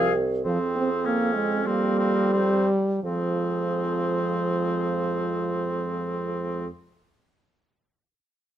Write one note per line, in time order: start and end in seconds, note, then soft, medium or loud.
0.00 0.44 C2 medium
0.00 0.15 F3 medium
0.00 0.13 C4 medium
0.00 0.15 G#4 medium
0.00 0.13 F5 loud
0.44 2.63 F2 medium
0.44 0.59 F3 medium
0.44 1.07 C4 soft
0.44 1.68 C4 medium
0.44 1.68 G#4 soft
0.76 0.89 C4 medium
1.06 1.36 A#3 medium
1.06 1.68 C#4 soft
1.35 1.65 G#3 medium
1.66 3.01 G3 medium
1.66 2.33 A#3 medium
1.66 1.99 C4 soft
1.66 2.34 A#4 soft
1.99 2.32 C4 soft
2.32 2.68 C4 soft
2.32 2.68 C5 soft
3.03 6.67 F2 soft
3.03 6.66 F3 medium
3.03 6.67 G#3 soft
3.03 6.67 C4 soft
3.03 6.67 G#4 soft